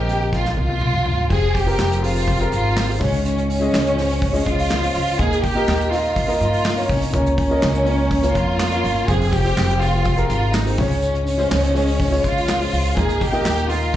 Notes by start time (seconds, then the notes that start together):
Already playing: A#1 A#2 F3 C4 F4 G4 A#4 C5 D#5
0.09 snare, closed hi-hat
0.21 closed hi-hat
0.33 F4, kick, snare
0.45 snare
0.57 C2 F4, high tom
0.69 high tom
0.81 mid tom
0.94 mid tom
1.06 G1, floor tom
1.18 floor tom
1.30 F1 C3 C4 F4 G4 G#4 C5, kick, crash
1.43 open hi-hat
1.55 G4, kick, hi-hat pedal, open hi-hat
1.66 C4 F4 G4 G#4 A#4, hi-hat pedal, open hi-hat
1.79 F1, snare, clap, hi-hat pedal, open hi-hat
1.91 hi-hat pedal, open hi-hat
2.02 C4 F4 G4 G#4 C5, hi-hat pedal, open hi-hat
2.16 hi-hat pedal, open hi-hat
2.28 kick, hi-hat pedal, open hi-hat
2.39 C4 F4 G4 G#4 A#4, hi-hat pedal
2.52 G#1 F4, hi-hat pedal, open hi-hat
2.65 open hi-hat
2.77 snare, clap, hi-hat pedal, open hi-hat
2.87 C4 F4 G4 G#4 C5, hi-hat pedal, open hi-hat
2.99 C#2 G#2 G#3 C#4 F4 G#4 C#5, kick, hi-hat pedal, open hi-hat
3.13 hi-hat pedal, open hi-hat
3.25 C#4, hi-hat pedal, open hi-hat
3.38 hi-hat pedal
3.50 C#4, hi-hat pedal, open hi-hat
3.60 G#3 C#4 F4 G#4 D#5, open hi-hat
3.73 C#2, snare, clap, hi-hat pedal, open hi-hat
3.86 hi-hat pedal, open hi-hat
3.96 G#3 C#4 F4 G#4 C5, snare, hi-hat pedal, open hi-hat
4.10 hi-hat pedal, open hi-hat
4.22 kick, hi-hat pedal, open hi-hat
4.33 G#3 C#4 F4 G#4 D#5, hi-hat pedal, open hi-hat
4.46 C#2 F4, kick, hi-hat pedal, open hi-hat
4.58 hi-hat pedal, open hi-hat
4.70 snare, clap, hi-hat pedal, open hi-hat
4.81 G#3 C#4 F4 G#4 C5, hi-hat pedal, open hi-hat
4.95 C#2, hi-hat pedal, open hi-hat
5.07 hi-hat pedal, open hi-hat
5.18 D#2 A#2 A#3 D#4 F4 G#4 A#4 D#5, kick, hi-hat pedal, open hi-hat
5.32 hi-hat pedal
5.43 G4, kick, hi-hat pedal, open hi-hat
5.55 A#3 D#4 F4 A#4 D#5, open hi-hat
5.68 D#2, snare, clap, hi-hat pedal, open hi-hat
5.80 hi-hat pedal
5.91 A#3 D#4 F4 A#4 D#5, snare, hi-hat pedal, open hi-hat
6.05 open hi-hat
6.16 kick, hi-hat pedal, open hi-hat
6.27 A#3 D#4 F4 A#4 D#5, hi-hat pedal, open hi-hat
6.41 G2 F4, hi-hat pedal, open hi-hat
6.53 hi-hat pedal, open hi-hat
6.65 snare, clap, hi-hat pedal, open hi-hat
6.76 A#3 D#4 F4 A#4 C#5, hi-hat pedal, open hi-hat
6.89 C2 C#4, kick, hi-hat pedal, open hi-hat
7.02 hi-hat pedal, open hi-hat
7.13 C#2 C#3 A#3 C#4 F4 A#4 C#5, kick, hi-hat pedal, open hi-hat
7.26 hi-hat pedal
7.38 C#4, kick, hi-hat pedal, open hi-hat
7.49 A#3 C#4 F4 A#4 D#5, open hi-hat
7.62 C#2, snare, clap, hi-hat pedal, open hi-hat
7.74 hi-hat pedal
7.85 A#3 C#4 F4 A#4 C#5, hi-hat pedal, open hi-hat
7.99 open hi-hat
8.11 kick, hi-hat pedal, open hi-hat
8.22 A#3 C#4 F4 A#4 C#5, hi-hat pedal
8.34 F2 F4, kick, hi-hat pedal, open hi-hat
8.48 open hi-hat
8.59 snare, clap, hi-hat pedal, open hi-hat
8.71 A#3 C#4 F4 A#4 C#5, hi-hat pedal
8.84 G1, hi-hat pedal, open hi-hat
8.96 open hi-hat
9.08 F1 C3 C4 F4 G4 G#4 C5, kick, hi-hat pedal, open hi-hat, tambourine
9.21 hi-hat pedal, open hi-hat
9.31 G4, kick, hi-hat pedal, open hi-hat, tambourine
9.44 C4 F4 G4 G#4 C5, hi-hat pedal, open hi-hat, tambourine
9.57 F1, snare, clap, hi-hat pedal, open hi-hat, tambourine
9.70 hi-hat pedal
9.80 C4 F4 G4 G#4 C5, hi-hat pedal, open hi-hat, tambourine
9.93 open hi-hat, tambourine
10.05 kick, hi-hat pedal, open hi-hat, tambourine
10.16 C4 F4 G4 G#4 A#4, hi-hat pedal
10.28 G#1 F4, hi-hat pedal, open hi-hat, tambourine
10.42 open hi-hat
10.53 D#4, snare, clap, hi-hat pedal, open hi-hat, tambourine
10.64 C4 F4 G4 G#4 C5, hi-hat pedal, open hi-hat
10.77 C#2 G#2 G#3 C#4 F4 G#4 C#5, kick, hi-hat pedal, open hi-hat, tambourine
10.91 hi-hat pedal, open hi-hat
11.02 C#4, hi-hat pedal, open hi-hat, tambourine
11.15 hi-hat pedal
11.26 C#4, hi-hat pedal, open hi-hat, tambourine
11.38 G#3 C#4 F4 G#4 C5, open hi-hat, tambourine
11.51 C#2, snare, clap, hi-hat pedal, open hi-hat, tambourine
11.63 hi-hat pedal, open hi-hat
11.74 G#3 C#4 F4 G#4 D#5, snare, hi-hat pedal, open hi-hat, tambourine
11.87 hi-hat pedal, open hi-hat, tambourine
12.00 kick, hi-hat pedal, open hi-hat, tambourine
12.10 G#3 C#4 F4 G#4 C#5, hi-hat pedal, open hi-hat
12.23 C#2 F4, kick, hi-hat pedal, open hi-hat, tambourine
12.37 hi-hat pedal, open hi-hat
12.48 snare, clap, hi-hat pedal, open hi-hat, tambourine
12.59 G#3 C#4 F4 G#4 C5, hi-hat pedal, open hi-hat
12.72 C#2, hi-hat pedal, open hi-hat, tambourine
12.85 hi-hat pedal, open hi-hat
12.96 D#2 A#2 A#3 D#4 F4 G#4 A#4 D#5, kick, hi-hat pedal, open hi-hat, tambourine
13.09 hi-hat pedal, tambourine
13.21 G4, kick, hi-hat pedal, open hi-hat, tambourine
13.32 A#3 D#4 F4 A#4 D#5, open hi-hat, tambourine
13.45 D#2, snare, clap, hi-hat pedal, open hi-hat, tambourine
13.57 hi-hat pedal, tambourine
13.68 A#3 D#4 F4 A#4 D#5, hi-hat pedal, open hi-hat, tambourine
13.82 open hi-hat, tambourine